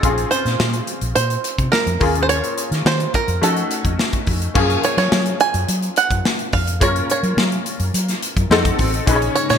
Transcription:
0.00 0.23 A#1 medium
0.00 1.97 C4 medium
0.00 1.97 C#4 medium
0.00 0.27 G#4 medium
0.00 kick loud
0.00 closed hi-hat medium
0.04 1.97 F4 medium
0.04 1.98 G#4 medium
0.18 closed hi-hat soft
0.31 1.12 C5 medium
0.31 closed hi-hat medium
0.45 0.55 A#2 medium
0.45 snare soft
0.45 closed hi-hat soft
0.60 0.79 A#2 medium
0.60 snare loud
0.73 closed hi-hat medium
0.87 closed hi-hat medium
1.01 1.11 A#1 medium
1.01 closed hi-hat medium
1.15 1.36 A#2 loud
1.15 1.71 C5 medium
1.15 closed hi-hat medium
1.30 closed hi-hat soft
1.44 closed hi-hat medium
1.58 1.68 C3 medium
1.58 kick medium
1.58 closed hi-hat soft
1.72 2.22 A#4 medium
1.72 snare medium
1.86 1.96 F2 medium
1.86 closed hi-hat soft
2.00 2.40 D#2 medium
2.00 3.39 A#3 medium
2.00 3.39 C#4 medium
2.00 3.40 F4 medium
2.00 3.40 G#4 medium
2.00 kick medium
2.00 open hi-hat medium
2.15 closed hi-hat medium
2.23 2.29 C5 medium
2.29 2.86 C#5 loud
2.29 closed hi-hat medium
2.44 closed hi-hat soft
2.58 closed hi-hat medium
2.71 2.81 D#3 medium
2.71 snare soft
2.71 closed hi-hat soft
2.85 3.05 D#3 medium
2.85 3.14 C5 medium
2.85 snare loud
3.00 closed hi-hat medium
3.14 3.43 A#4 medium
3.14 kick medium
3.14 closed hi-hat medium
3.28 3.38 F2 medium
3.28 closed hi-hat medium
3.41 3.62 F3 medium
3.41 4.53 A3 medium
3.41 4.53 C#4 medium
3.41 4.53 D#4 medium
3.41 4.54 F#4 medium
3.41 4.23 A4 medium
3.41 closed hi-hat medium
3.57 closed hi-hat soft
3.71 closed hi-hat medium
3.85 3.95 F2 medium
3.85 kick medium
3.85 closed hi-hat soft
3.99 snare medium
4.13 kick medium
4.13 closed hi-hat soft
4.27 4.47 F2 medium
4.27 kick medium
4.27 open hi-hat medium
4.42 closed hi-hat medium
4.54 4.75 F#2 loud
4.54 6.78 F3 medium
4.54 6.77 A#3 medium
4.54 6.77 C#4 medium
4.54 6.78 G#4 medium
4.54 kick loud
4.54 crash medium
4.70 closed hi-hat soft
4.83 4.97 C#5 medium
4.83 closed hi-hat medium
4.97 5.07 F#3 medium
4.97 5.40 C#5 medium
4.97 snare soft
4.97 closed hi-hat soft
5.12 5.31 F#3 medium
5.12 snare loud
5.26 closed hi-hat soft
5.40 5.97 G#5 loud
5.40 closed hi-hat medium
5.54 5.64 F#2 medium
5.54 closed hi-hat medium
5.68 5.88 F#3 loud
5.68 closed hi-hat medium
5.82 closed hi-hat soft
5.96 6.53 F#5 loud
5.96 closed hi-hat medium
6.10 6.20 F#2 medium
6.10 kick medium
6.10 closed hi-hat soft
6.25 snare medium
6.39 closed hi-hat soft
6.53 6.81 F2 medium
6.53 6.82 F5 medium
6.53 kick medium
6.53 open hi-hat medium
6.67 closed hi-hat medium
6.80 7.01 F#2 medium
6.80 8.47 A#3 medium
6.80 8.47 C#4 medium
6.80 8.48 F4 medium
6.80 8.48 A#4 medium
6.80 7.10 C#5 medium
6.80 kick loud
6.80 closed hi-hat medium
6.96 closed hi-hat soft
7.10 7.63 C#5 medium
7.10 closed hi-hat medium
7.23 7.33 F#3 medium
7.23 closed hi-hat soft
7.37 7.57 F#3 medium
7.37 snare loud
7.52 closed hi-hat medium
7.66 closed hi-hat medium
7.80 7.90 F#2 medium
7.80 closed hi-hat medium
7.94 8.14 F#3 medium
7.94 closed hi-hat medium
8.08 snare soft
8.08 closed hi-hat soft
8.23 closed hi-hat medium
8.37 8.46 F#2 medium
8.37 kick medium
8.37 closed hi-hat soft
8.50 8.70 F2 loud
8.50 9.07 C4 medium
8.50 9.06 D#4 medium
8.50 9.08 F#4 medium
8.50 9.08 A4 medium
8.50 snare medium
8.65 kick medium
8.65 closed hi-hat medium
8.79 8.99 A1 medium
8.79 kick medium
8.79 open hi-hat medium
8.94 closed hi-hat medium
9.07 9.27 A#1 loud
9.07 9.58 C#3 medium
9.07 9.58 G#3 medium
9.07 9.58 A#3 medium
9.07 9.58 C#4 medium
9.07 9.58 D#4 medium
9.07 9.58 G#4 medium
9.07 9.15 B4 medium
9.07 kick loud
9.07 closed hi-hat medium
9.15 9.58 C#5 medium
9.22 closed hi-hat soft
9.35 9.49 C#5 medium
9.35 closed hi-hat medium
9.50 9.58 A#2 medium
9.50 9.58 C#5 medium
9.50 snare soft
9.50 closed hi-hat soft

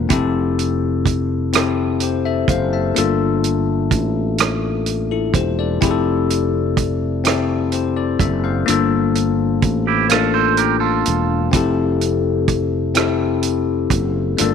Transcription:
0.00 0.12 A#3 medium
0.00 0.12 D4 medium
0.00 0.12 F4 medium
0.00 0.12 A#4 medium
0.09 2.45 F1 loud
0.09 1.02 C4 medium
0.09 1.03 E4 medium
0.09 1.03 G4 medium
0.09 1.04 A4 loud
0.09 kick loud
0.09 closed hi-hat medium
0.59 closed hi-hat soft
1.06 kick medium
1.06 closed hi-hat soft
1.53 2.46 C4 medium
1.53 2.46 E4 medium
1.53 2.02 G4 medium
1.53 2.02 A4 medium
1.53 cross-stick loud
1.53 closed hi-hat medium
2.00 2.25 G4 medium
2.00 2.24 C5 medium
2.00 closed hi-hat soft
2.25 2.48 A4 medium
2.25 2.48 E5 medium
2.48 2.92 F#1 medium
2.48 2.72 C5 medium
2.48 2.71 F5 medium
2.48 kick medium
2.48 closed hi-hat medium
2.73 3.18 E5 soft
2.73 3.18 A5 medium
2.95 3.88 G1 medium
2.95 3.88 A#3 medium
2.95 3.89 D4 medium
2.95 3.90 F4 medium
2.95 3.90 A4 medium
2.95 closed hi-hat medium
3.44 closed hi-hat soft
3.91 5.30 A1 medium
3.91 kick medium
3.91 closed hi-hat soft
4.38 cross-stick medium
4.38 closed hi-hat medium
4.86 closed hi-hat soft
5.11 5.34 E4 soft
5.11 5.33 A4 medium
5.34 5.78 E1 medium
5.34 5.58 G4 soft
5.34 5.57 C5 medium
5.34 kick medium
5.34 closed hi-hat medium
5.59 5.90 A4 soft
5.59 6.04 D5 medium
5.81 8.16 F1 medium
5.81 6.74 C4 medium
5.81 6.75 E4 medium
5.81 6.75 G4 medium
5.81 5.90 G#4 medium
5.81 kick loud
5.81 closed hi-hat medium
5.91 6.79 A4 medium
6.30 closed hi-hat soft
6.77 kick medium
6.77 closed hi-hat soft
7.24 8.17 C4 medium
7.24 8.18 E4 medium
7.24 7.72 G4 medium
7.24 7.74 A4 medium
7.24 cross-stick medium
7.24 closed hi-hat medium
7.72 7.95 G4 soft
7.72 7.95 C5 medium
7.72 closed hi-hat soft
7.96 8.19 A4 medium
7.96 8.19 D5 medium
8.19 8.63 F#1 medium
8.19 8.43 A4 medium
8.19 8.43 E5 medium
8.19 kick medium
8.19 closed hi-hat medium
8.44 8.89 C5 soft
8.44 8.89 F5 medium
8.66 9.59 G1 medium
8.66 9.59 A#3 medium
8.66 9.60 D4 medium
8.66 9.61 F4 medium
8.66 closed hi-hat medium
8.70 9.61 A4 medium
9.15 closed hi-hat soft
9.62 11.02 A1 medium
9.62 kick medium
9.62 closed hi-hat soft
9.87 10.10 E4 medium
9.87 10.09 G4 medium
10.09 11.03 A#3 medium
10.09 11.03 D4 medium
10.09 10.33 F4 medium
10.09 11.04 F4 medium
10.09 10.33 A4 medium
10.09 11.04 A4 medium
10.09 cross-stick medium
10.09 closed hi-hat medium
10.34 10.57 A4 medium
10.34 10.57 C5 medium
10.57 10.81 G4 medium
10.57 10.80 A#4 medium
10.57 closed hi-hat soft
10.80 11.49 F4 medium
10.80 11.49 A4 medium
11.05 11.50 E1 medium
11.05 closed hi-hat medium
11.52 13.88 F1 medium
11.52 12.45 C4 medium
11.52 12.46 E4 medium
11.52 12.46 G4 medium
11.52 kick loud
11.52 closed hi-hat medium
11.56 12.47 A4 loud
12.01 closed hi-hat soft
12.48 kick medium
12.48 closed hi-hat soft
12.95 13.88 C4 medium
12.95 13.89 E4 medium
12.95 13.89 G4 medium
12.95 13.90 A4 medium
12.95 cross-stick loud
12.95 closed hi-hat medium
13.43 closed hi-hat soft
13.90 14.35 F#1 medium
13.90 kick loud
13.90 closed hi-hat medium
14.37 14.54 G1 medium
14.37 14.45 A3 medium
14.37 14.54 D4 medium
14.37 14.54 F4 medium
14.37 14.54 A4 medium
14.37 closed hi-hat medium
14.44 14.54 A#3 medium

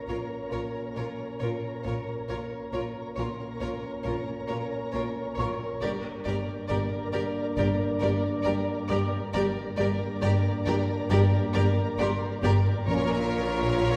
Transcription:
0.00 2.24 A#3 soft
0.00 2.24 C#4 soft
0.00 2.26 A#4 soft
0.00 2.25 C#5 soft
0.00 1.37 A#5 soft
0.00 2.25 A#5 soft
0.07 0.16 A#1 soft
0.07 0.17 A#2 soft
0.07 0.15 F4 soft
0.07 0.18 A#4 soft
0.07 0.16 C#5 soft
0.51 0.61 A#1 soft
0.51 0.60 A#2 soft
0.51 0.59 F4 soft
0.51 0.60 A#4 soft
0.51 0.60 C#5 soft
0.96 1.05 A#1 soft
0.96 1.04 A#2 soft
0.96 1.04 F4 soft
0.96 1.05 A#4 soft
0.96 1.04 C#5 soft
1.39 1.49 A#1 soft
1.39 1.49 A#2 soft
1.39 1.49 F4 soft
1.39 1.49 A#4 soft
1.39 1.47 C#5 soft
1.84 1.93 A#1 soft
1.84 1.93 A#2 soft
1.84 1.92 F4 soft
1.84 1.95 A#4 soft
1.84 1.92 C#5 soft
2.28 2.37 A#1 soft
2.28 2.37 A#2 soft
2.28 5.78 A#3 medium
2.28 5.78 C#4 medium
2.28 2.38 F4 soft
2.28 2.38 A#4 soft
2.28 5.79 A#4 medium
2.28 2.36 C#5 soft
2.28 5.79 C#5 medium
2.28 5.79 A#5 medium
2.72 2.81 A#1 soft
2.72 2.81 A#2 soft
2.72 2.82 F4 soft
2.72 2.82 A#4 soft
2.72 2.80 C#5 soft
3.16 3.25 A#1 soft
3.16 3.26 A#2 soft
3.16 3.25 F4 soft
3.16 3.26 A#4 soft
3.16 3.24 C#5 soft
3.16 5.79 C6 soft
3.60 3.69 A#1 soft
3.60 3.69 A#2 soft
3.60 3.69 F4 soft
3.60 3.70 A#4 soft
3.60 3.68 C#5 soft
4.04 4.13 A#1 medium
4.04 4.13 A#2 soft
4.04 4.13 F4 soft
4.04 4.13 A#4 soft
4.04 4.12 C#5 soft
4.47 4.58 A#1 soft
4.47 4.57 A#2 soft
4.47 4.57 F4 soft
4.47 4.56 A#4 soft
4.47 4.55 C#5 soft
4.92 5.02 A#1 soft
4.92 5.02 A#2 medium
4.92 5.02 F4 soft
4.92 5.02 A#4 soft
4.92 5.00 C#5 soft
5.36 5.45 A#1 medium
5.36 5.46 A#2 medium
5.36 5.47 F4 soft
5.36 5.48 A#4 soft
5.36 5.44 C#5 soft
5.36 7.99 C#6 medium
5.81 5.90 G1 medium
5.81 5.91 G2 medium
5.81 9.17 A#3 medium
5.81 9.17 D4 medium
5.81 5.89 G4 medium
5.81 5.90 A#4 medium
5.81 9.32 A#4 medium
5.81 5.89 D5 medium
5.81 9.32 A#5 medium
5.85 9.34 D5 medium
6.24 6.33 G1 medium
6.24 6.34 G2 medium
6.24 6.34 G4 soft
6.24 6.36 A#4 medium
6.24 6.32 D5 soft
6.68 6.78 G1 medium
6.68 6.78 G2 medium
6.68 6.77 G4 medium
6.68 6.77 A#4 medium
6.68 6.76 D5 medium
7.13 7.22 G1 medium
7.13 7.22 G2 medium
7.13 7.21 G4 medium
7.13 7.21 A#4 medium
7.13 7.21 D5 soft
7.57 7.66 G1 medium
7.57 7.66 G2 medium
7.57 7.66 G4 medium
7.57 7.65 A#4 medium
7.57 7.65 D5 soft
8.00 8.11 G1 medium
8.00 8.10 G2 medium
8.00 8.10 G4 medium
8.00 8.08 A#4 medium
8.00 8.09 D5 medium
8.44 8.54 G1 medium
8.44 8.54 G2 medium
8.44 8.53 G4 medium
8.44 8.53 A#4 medium
8.44 8.52 D5 medium
8.88 8.99 G1 medium
8.88 8.98 G2 medium
8.88 8.97 G4 medium
8.88 8.99 A#4 medium
8.88 8.96 D5 medium
8.88 11.51 D6 soft
9.33 9.43 G1 medium
9.33 9.43 G2 medium
9.33 12.84 A#3 medium
9.33 12.84 D4 medium
9.33 9.43 G4 medium
9.33 9.41 A#4 medium
9.33 12.84 A#4 medium
9.33 9.42 D5 medium
9.33 12.84 D5 medium
9.33 12.84 A#5 medium
9.76 9.88 G1 medium
9.76 9.86 G2 medium
9.76 9.86 G4 medium
9.76 9.88 A#4 medium
9.76 9.84 D5 medium
10.22 10.31 G1 medium
10.22 10.30 G2 medium
10.22 10.30 G4 medium
10.22 10.31 A#4 medium
10.22 10.30 D5 medium
10.66 10.75 G1 medium
10.66 10.75 G2 medium
10.66 10.74 G4 medium
10.66 10.75 A#4 medium
10.66 10.74 D5 medium
11.10 11.19 G1 medium
11.10 11.19 G2 medium
11.10 11.19 G4 medium
11.10 11.18 A#4 medium
11.10 11.18 D5 medium
11.53 11.63 G1 medium
11.53 11.63 G2 medium
11.53 11.63 G4 medium
11.53 11.62 A#4 medium
11.53 11.61 D5 medium
11.98 12.07 G1 medium
11.98 12.07 G2 medium
11.98 12.07 G4 medium
11.98 12.08 A#4 medium
11.98 12.06 D5 medium
11.98 13.96 C6 medium
12.43 12.51 G1 medium
12.43 12.51 G2 medium
12.43 12.51 G4 medium
12.43 12.53 A#4 medium
12.43 12.51 D5 medium
12.86 13.96 A#1 medium
12.86 13.96 A#2 medium
12.86 13.20 A#3 medium
12.86 13.20 C#4 medium
12.86 13.96 F4 medium
12.86 13.96 A#4 medium
12.86 13.96 C#5 medium
12.86 13.96 A#5 medium
12.86 13.96 F6 medium
13.76 13.96 F#6 medium

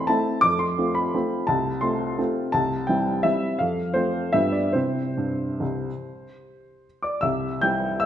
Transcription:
0.00 0.10 E2 soft
0.00 0.09 C4 soft
0.00 0.09 E4 soft
0.00 0.10 B5 medium
0.07 0.40 A3 soft
0.07 0.40 C4 soft
0.07 0.40 E4 soft
0.07 0.42 A5 medium
0.41 0.76 F2 soft
0.41 0.59 D6 medium
0.59 0.95 C6 medium
0.78 1.10 A3 soft
0.78 1.10 C4 soft
0.78 1.10 F4 soft
0.95 1.48 B5 medium
1.14 1.46 A3 soft
1.14 1.45 C4 soft
1.14 1.46 F4 soft
1.47 1.82 C2 soft
1.47 1.82 A5 medium
1.81 2.15 A3 soft
1.81 2.15 C4 soft
1.81 2.15 F4 soft
1.81 2.18 C6 medium
2.18 2.50 A3 soft
2.18 2.50 C4 soft
2.18 2.51 F4 soft
2.52 2.87 C2 soft
2.52 2.87 A5 medium
2.87 3.21 G3 soft
2.87 3.21 C4 soft
2.87 3.21 E4 soft
2.87 3.24 G5 medium
3.23 3.56 G3 soft
3.23 3.57 C4 soft
3.23 3.57 E4 soft
3.23 3.59 E5 medium
3.59 3.95 F2 soft
3.59 3.95 F5 medium
3.94 4.30 A3 soft
3.94 4.30 C4 soft
3.94 4.30 F4 soft
3.94 4.33 C5 medium
4.33 4.74 G2 soft
4.33 4.71 G3 soft
4.33 4.71 B3 soft
4.33 4.72 F4 soft
4.33 4.54 E5 medium
4.52 4.74 D5 soft
4.73 5.04 C3 soft
4.73 5.09 C4 soft
4.73 5.09 E4 soft
4.73 7.04 C5 medium
5.17 5.48 G2 soft
5.60 5.89 C2 soft
7.03 7.22 D5 soft
7.03 7.23 D6 soft
7.21 7.60 C2 soft
7.21 7.59 E5 soft
7.21 7.61 E6 medium
7.61 8.06 G3 soft
7.61 8.06 C4 soft
7.61 8.06 E4 soft
7.61 7.98 G5 medium
7.61 8.00 G6 medium
8.00 8.06 E5 medium
8.00 8.06 E6 medium

